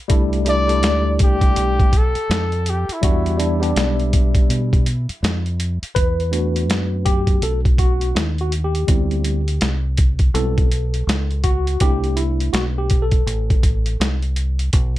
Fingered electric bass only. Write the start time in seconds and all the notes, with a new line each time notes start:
0.10 C2
0.83 D2
1.20 C2
1.56 B1
2.15 muted fingered electric bass stroke
2.29 F2
2.89 muted fingered electric bass stroke
3.03 E2
3.76 B1
4.49 B2
5.09 muted fingered electric bass stroke
5.23 F2
5.82 muted fingered electric bass stroke
5.96 E2
6.68 F#2
7.42 B1
8.15 D#2
8.88 D2
9.61 C2
10.34 B1
11.07 C#2
11.81 C2
12.53 B1
13.26 A1
14.00 C2
14.73 B1